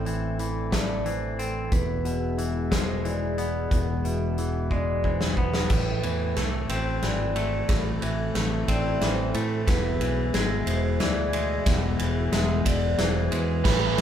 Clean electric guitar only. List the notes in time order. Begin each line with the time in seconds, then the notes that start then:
Already playing: A2 A3 C4
0.06 E3
0.40 E3
0.73 A3
1.06 E3
1.39 C4
1.72 E2
2.05 B2
2.38 E3
2.71 G#3
3.04 E3
3.38 B3
3.71 E2
4.05 B2
4.39 E3
4.71 G#3
5.04 E3
5.38 B3
5.71 A2
6.04 E3
6.37 A3
6.70 C4
7.03 E3
7.36 A3
7.69 A2
8.02 E3
8.35 A3
8.68 C4
9.02 E3
9.35 A3
9.68 E2
10.01 E3
10.35 G#3
11.00 E3
11.34 G#3
11.66 E2
11.99 E3
12.32 G#3
12.98 E3
13.32 G#3
13.65 A2